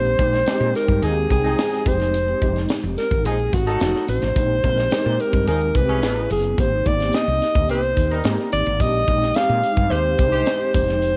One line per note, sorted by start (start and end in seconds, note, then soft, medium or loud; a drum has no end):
0.00 0.14 A#1 loud
0.00 0.10 D#4 medium
0.00 0.10 G4 medium
0.00 0.75 C5 loud
0.05 closed hi-hat soft
0.19 0.42 A#1 loud
0.19 0.37 G#3 medium
0.19 0.38 C4 medium
0.19 0.38 D#4 medium
0.19 0.38 G4 medium
0.19 kick loud
0.19 closed hi-hat medium
0.19 tambourine soft
0.33 snare soft
0.33 closed hi-hat medium
0.46 0.65 G#3 loud
0.46 0.65 C4 loud
0.46 0.66 D#4 medium
0.46 0.66 G4 loud
0.46 snare loud
0.46 tambourine medium
0.60 0.72 A#2 loud
0.60 closed hi-hat soft
0.74 1.12 G#3 medium
0.74 1.12 C4 medium
0.74 1.12 D#4 medium
0.74 1.12 G4 medium
0.74 1.06 A#4 loud
0.74 snare soft
0.74 closed hi-hat medium
0.74 tambourine medium
0.88 1.00 G2 loud
0.88 kick loud
0.88 closed hi-hat medium
1.02 1.26 D#2 loud
1.02 1.15 F3 medium
1.02 1.14 D#4 medium
1.02 1.14 G#4 medium
1.02 1.31 G#4 medium
1.02 closed hi-hat medium
1.02 tambourine soft
1.30 1.54 C2 loud
1.30 1.84 G#3 medium
1.30 1.85 C4 medium
1.30 1.85 D#4 medium
1.30 1.89 G#4 medium
1.30 1.86 G5 medium
1.30 kick medium
1.30 closed hi-hat medium
1.30 tambourine medium
1.44 1.84 F3 medium
1.44 1.84 D#4 medium
1.44 1.84 G#4 loud
1.44 closed hi-hat soft
1.58 snare loud
1.58 tambourine medium
1.72 snare soft
1.72 closed hi-hat soft
1.86 2.33 F1 loud
1.86 2.30 G#3 medium
1.86 2.31 C4 medium
1.86 2.31 D#4 medium
1.86 2.31 G4 medium
1.86 2.71 C5 medium
1.86 kick loud
1.86 closed hi-hat medium
1.86 tambourine medium
2.00 snare soft
2.00 closed hi-hat medium
2.14 closed hi-hat loud
2.14 tambourine soft
2.28 closed hi-hat soft
2.41 2.65 F1 loud
2.41 3.16 G#3 medium
2.41 3.16 C4 medium
2.41 3.16 D#4 medium
2.41 3.16 G4 medium
2.41 kick medium
2.41 closed hi-hat medium
2.56 snare soft
2.56 closed hi-hat medium
2.69 snare loud
2.69 tambourine medium
2.83 2.95 F1 medium
2.83 closed hi-hat soft
2.98 3.27 A#4 medium
2.98 snare soft
2.98 closed hi-hat medium
2.98 tambourine medium
3.11 3.26 G#1 medium
3.11 kick loud
3.11 closed hi-hat medium
3.25 3.49 A#1 medium
3.25 3.37 F3 medium
3.25 3.37 D#4 medium
3.25 3.55 G#4 medium
3.25 3.37 G#4 loud
3.25 closed hi-hat medium
3.39 closed hi-hat soft
3.53 3.76 G#1 loud
3.53 4.09 F#4 medium
3.53 kick medium
3.53 closed hi-hat medium
3.53 tambourine medium
3.67 4.06 F#3 medium
3.67 4.06 D#4 medium
3.67 4.06 A4 loud
3.67 closed hi-hat soft
3.80 3.92 F1 medium
3.80 4.18 A3 medium
3.80 4.18 C4 medium
3.80 4.18 D#4 medium
3.80 4.18 F#4 medium
3.80 snare loud
3.80 tambourine medium
3.95 snare soft
3.95 closed hi-hat soft
4.08 4.20 A1 loud
4.08 5.22 C5 loud
4.08 closed hi-hat medium
4.08 tambourine medium
4.22 4.34 A1 medium
4.22 snare soft
4.22 closed hi-hat medium
4.35 4.59 A#1 loud
4.35 4.54 G#3 medium
4.35 4.54 C4 medium
4.35 4.55 D#4 medium
4.35 4.55 G4 medium
4.35 kick loud
4.35 closed hi-hat loud
4.35 tambourine soft
4.64 4.87 A#1 loud
4.64 4.82 G#3 medium
4.64 4.83 C4 medium
4.64 4.83 D#4 medium
4.64 4.83 A#4 loud
4.64 kick medium
4.64 closed hi-hat medium
4.64 tambourine soft
4.78 snare soft
4.78 closed hi-hat medium
4.91 5.10 G#3 loud
4.91 5.10 C4 medium
4.91 5.10 D#4 loud
4.91 5.11 G4 loud
4.91 snare loud
4.91 tambourine medium
5.06 5.17 A#2 loud
5.19 5.56 G#3 medium
5.19 5.56 C4 medium
5.19 5.56 D#4 medium
5.19 5.57 G4 medium
5.19 5.48 A#4 loud
5.19 closed hi-hat medium
5.19 tambourine medium
5.33 5.45 G2 medium
5.33 kick loud
5.33 closed hi-hat medium
5.47 5.71 D#2 loud
5.47 5.59 F3 medium
5.47 5.59 D#4 medium
5.47 5.59 G#4 medium
5.47 5.78 A#4 loud
5.47 closed hi-hat medium
5.47 tambourine soft
5.61 closed hi-hat soft
5.74 6.03 C2 loud
5.74 6.02 G#3 medium
5.74 6.03 C4 medium
5.74 6.03 D#4 medium
5.74 6.03 G4 medium
5.74 6.31 B4 loud
5.74 kick medium
5.74 closed hi-hat medium
5.74 tambourine medium
5.88 6.28 E3 medium
5.88 6.28 C#4 medium
5.88 6.28 G#4 medium
5.88 closed hi-hat soft
6.02 6.26 A1 loud
6.02 6.47 B3 medium
6.02 6.47 C#4 medium
6.02 6.47 E4 medium
6.02 6.47 G#4 medium
6.02 snare loud
6.02 tambourine medium
6.30 6.54 F#1 loud
6.30 6.61 G#4 medium
6.30 open hi-hat medium
6.30 tambourine medium
6.44 closed hi-hat medium
6.58 6.81 G#1 medium
6.58 6.76 A#3 medium
6.58 6.77 C4 medium
6.58 6.77 D#4 medium
6.58 6.77 G4 medium
6.58 6.89 C5 loud
6.58 kick loud
6.58 closed hi-hat loud
6.58 tambourine soft
6.85 7.09 G#1 medium
6.85 7.60 A#3 medium
6.85 6.92 B3 medium
6.85 7.60 D#4 medium
6.85 7.60 G4 medium
6.85 7.17 D5 loud
6.85 kick medium
6.85 closed hi-hat medium
6.85 tambourine soft
6.92 7.63 C4 medium
7.00 snare soft
7.00 closed hi-hat medium
7.13 7.70 D#5 loud
7.13 snare loud
7.13 tambourine medium
7.28 7.39 C2 medium
7.28 closed hi-hat soft
7.42 snare soft
7.42 closed hi-hat medium
7.42 tambourine soft
7.55 7.70 D2 loud
7.55 kick loud
7.55 closed hi-hat medium
7.69 7.93 C2 loud
7.69 7.81 D#3 medium
7.69 7.81 C4 medium
7.69 7.81 G4 medium
7.69 8.22 C5 loud
7.69 closed hi-hat medium
7.69 tambourine soft
7.83 closed hi-hat soft
7.97 8.20 D#2 medium
7.97 kick medium
7.97 closed hi-hat medium
7.97 tambourine soft
8.11 8.51 G3 medium
8.11 8.50 D#4 medium
8.11 8.50 A#4 medium
8.11 closed hi-hat soft
8.24 8.36 G#2 loud
8.24 8.62 A#3 medium
8.24 8.62 C4 medium
8.24 8.62 D#4 medium
8.24 8.62 G4 medium
8.24 snare loud
8.24 tambourine medium
8.39 snare soft
8.52 8.64 G#1 loud
8.52 8.83 D5 loud
8.52 closed hi-hat medium
8.52 tambourine soft
8.66 8.78 G#1 medium
8.66 closed hi-hat medium
8.79 9.03 A#1 loud
8.79 8.98 G#3 medium
8.79 8.98 C4 medium
8.79 8.99 D#4 medium
8.79 8.99 G4 medium
8.79 9.38 D#5 loud
8.79 kick loud
8.79 closed hi-hat loud
8.79 tambourine soft
8.94 closed hi-hat soft
9.07 9.31 A#1 loud
9.07 9.26 G#3 medium
9.07 9.26 C4 medium
9.07 9.27 D#4 medium
9.07 9.27 G4 medium
9.07 kick medium
9.07 closed hi-hat medium
9.22 snare soft
9.22 closed hi-hat medium
9.34 9.54 G#3 medium
9.34 9.54 C4 medium
9.34 9.54 D#4 medium
9.34 9.54 G4 loud
9.34 9.93 F5 loud
9.34 snare loud
9.34 tambourine medium
9.49 9.61 A#2 medium
9.49 closed hi-hat soft
9.62 10.00 G#3 medium
9.62 10.00 C4 medium
9.62 10.01 D#4 medium
9.62 10.01 G4 medium
9.62 closed hi-hat medium
9.62 tambourine medium
9.77 9.89 G2 loud
9.77 kick loud
9.77 closed hi-hat medium
9.91 10.14 D#2 loud
9.91 10.03 G#3 medium
9.91 10.03 G4 medium
9.91 10.75 C5 loud
9.91 10.03 C5 medium
9.91 closed hi-hat medium
10.05 closed hi-hat soft
10.18 10.42 C2 loud
10.18 10.73 G#3 medium
10.18 10.73 C4 medium
10.18 10.25 D4 medium
10.18 10.74 G4 medium
10.18 kick loud
10.18 closed hi-hat medium
10.18 tambourine medium
10.25 10.73 D#4 medium
10.32 10.72 G#3 medium
10.32 10.72 G4 loud
10.32 10.72 C5 loud
10.32 closed hi-hat soft
10.46 snare loud
10.46 tambourine medium
10.60 closed hi-hat soft
10.74 11.17 F1 loud
10.74 11.17 G#3 medium
10.74 11.17 C4 medium
10.74 11.17 D#4 medium
10.74 11.17 G4 medium
10.74 11.17 C5 loud
10.74 kick loud
10.74 closed hi-hat medium
10.74 tambourine medium
10.88 snare soft
10.88 closed hi-hat medium
11.02 closed hi-hat medium
11.02 tambourine soft